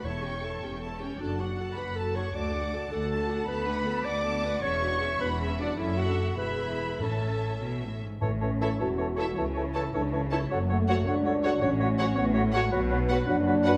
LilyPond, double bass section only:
\new Staff \with { instrumentName = "Double bass section" } { \clef bass \time 6/8 \key d \major \tempo 4. = 105 e,,4. e,,4. | fis,,4. fis,,4. | d,4. d,4. | \key a \major d,4. d,4. |
e,,4. e,,4. | fis,,4. e,,4. | a,,2~ a,,8 r8 | a,,4. e,,4. |
cis,4. cis,4. | fis,,4. cis,4. | a,,4. a,,4. | \key b \minor b,,4. fis,,4. | }